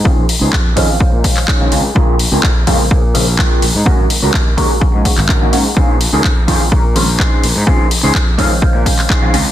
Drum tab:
HH |--o---o---o---o-|--o---o---o---o-|--o---o---o---o-|--o---o---o---o-|
CP |----x------xx---|----x-------x---|----x------xx---|----x-------x---|
BD |o---o-o-o-o-o---|o---o-o-o---o---|o---o-o-o-o-o---|o---o-o-o---o---|

HH |--o---o---o---o-|
CP |----x------xx---|
BD |o---o-o-o-o-o---|